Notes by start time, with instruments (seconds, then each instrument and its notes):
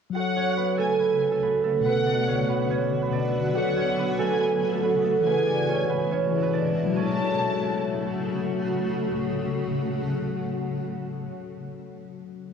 0.10 tine electric piano F#3 F#4
0.15 ambient pad C#3 A3 F#4, harp F#4 F#5, tine electric piano A4, violin section F#5
0.20 tine electric piano C#5
0.36 harp C#4 C#5
0.57 harp B3 B4
0.78 harp A3 A4, violin section G#5
0.99 harp B3 B4
1.31 harp A3 A4
1.43 harp B3 B4
1.63 harp A3 A4
1.80 tine electric piano B2 B3
1.85 ambient pad D3 B3, harp B3 B4, tine electric piano F#4, violin section F#5
1.90 tine electric piano B4
2.06 harp D4 D5
2.27 harp C#4 C#5
2.49 harp B3 B4
2.70 harp C#4 C#5
3.02 harp B3 B4
3.10 tine electric piano B2 B3 F#4, harp D4 D5
3.16 tine electric piano D5
3.50 tine electric piano F#3 F#4
3.55 ambient pad C#3 A3, harp F#4 F#5, tine electric piano A4, violin section F#5
3.60 tine electric piano C#5
3.76 harp C#4 C#5
3.99 harp B3 B4
4.19 harp A3 A4, violin section G#5
4.40 harp B3 B4
4.72 harp A3 A4
4.80 tine electric piano F#3 F#4 A4, harp B3 B4
4.85 tine electric piano C#5
5.04 harp A3 A4
5.20 tine electric piano E3 E4
5.25 ambient pad B2 G#3 E4, harp B3 B4, tine electric piano G#4, violin section G#5
5.30 tine electric piano B4
5.47 harp D4 D5
5.68 harp C#4 C#5
5.89 harp B3 B4
6.11 harp C#4 C#5
6.29 tine electric piano E3 E4 G#4
6.34 tine electric piano B4
6.42 harp B3 B4
6.53 harp D4 D5
6.86 tine electric piano F#3
6.92 ambient pad C#3 A3 F#4, harp C#4, tine electric piano F#4, violin section A5
6.99 tine electric piano A4
7.06 tine electric piano C#5